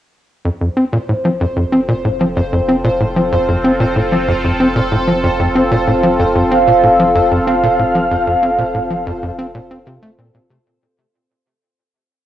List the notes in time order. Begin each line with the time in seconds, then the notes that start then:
0.45 F1 F2 C4 C5
0.61 F2
0.71 F4
0.77 C4
0.93 A#2
1.02 A4
1.09 A2
1.25 F3
1.40 F2
1.56 F2
1.72 C4
1.88 A#2
2.05 A2
2.21 F3
2.37 F2
2.53 F2
2.69 C4
2.84 A#2
3.00 A2
3.16 F3
3.32 F2
3.48 F2
3.64 C4
3.80 A#2
3.96 A2
4.12 F3
4.28 F2
4.44 F2
4.60 C4
4.76 A#2
4.92 A2
5.07 F3
5.23 F2
5.39 F2
5.55 C4
5.71 A#2
5.87 A2
6.03 F3
6.19 F2
6.35 F2
6.51 C4 F5
6.67 A#2
6.83 A2 F5
7.00 F3
7.15 F2
7.31 F2
7.47 C4
7.63 A#2
7.79 A2
7.95 F3
8.11 F2
8.27 F2
8.43 C4
8.58 A#2
8.74 A2
8.90 F3
9.06 F2
9.22 F2
9.38 C4
9.54 A#2
9.71 C4
9.86 C3
10.02 A3
10.18 A#2
10.34 A#2
10.50 C3